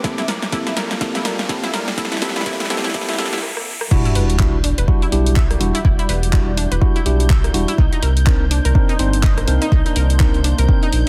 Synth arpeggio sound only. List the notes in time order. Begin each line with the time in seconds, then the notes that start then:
0.04 E4
0.18 E4
0.28 A#4
0.53 E4
0.67 E4
0.77 A#4
1.01 E4
1.15 E4
1.25 A#4
1.49 E4
1.64 E4
1.74 A#4
1.98 E4
2.12 E4
2.22 E4
2.36 E4
2.46 E4
2.60 E4
2.70 E4
2.85 E4
2.95 E4
3.09 E4
3.19 E4
3.33 E4
3.91 E4
4.05 E4
4.16 B4
4.64 D4
4.78 B4
5.02 E4
5.36 E5
5.75 E4
5.85 E4
5.99 E4
6.09 B4
6.57 D4
6.71 B4
6.96 E4
7.30 E5
7.68 E4
7.78 D#4
7.92 D#4
8.02 A#4
8.51 D4
8.65 A#4
8.89 D#4
9.23 D#5
9.62 D#4
9.72 D#4
9.86 D#4
9.96 A#4
10.44 D4
10.59 A#4
10.83 D#4